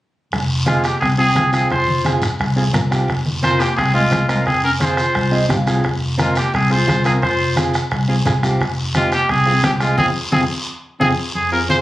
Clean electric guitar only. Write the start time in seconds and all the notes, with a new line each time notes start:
0.66 C4 F4 G#4
1.18 C4 F4 G#4
1.35 C4 F4 G#4
1.53 C4 F4 G#4
2.05 C4 F4 G#4
2.56 C4 F4 G#4
2.73 C4 F4 A#4
2.91 C4 F4 G4
3.43 C4 F4 A#4
3.94 C4 F4 G#4
4.11 C4 F4 G#4
4.28 C4 F4 A#4
4.80 C4 F4 G#4
5.31 C4 F4 G#4 D#5
5.49 C4 F4 G4 F5
5.67 C4 F4 G#4
6.18 C4 F4 A#4
6.70 C4 F4 G#4
6.87 C4 F4 G#4
7.04 C4 F4 A#4
7.56 C4 F4 G#4
8.08 C4 F4 G#4
8.26 C4 F4 G#4
8.43 C4 F4 G4
8.95 C4 F4 G4
9.46 C4 F4 G#4
9.64 C4 F4 G4
9.81 C4 F4 G#4
9.99 C4 F4 G#4
10.32 C4 F4 G#4
11.00 C4 F4 G#4
11.52 C4 F4 G#4
11.69 C4 F4 G#4